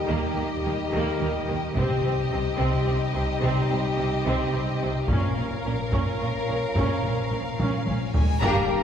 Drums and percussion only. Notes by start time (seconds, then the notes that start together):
1.76 taiko
5.08 taiko
5.92 taiko
6.76 taiko
7.60 taiko high
7.87 taiko high
8.14 taiko low
8.43 taiko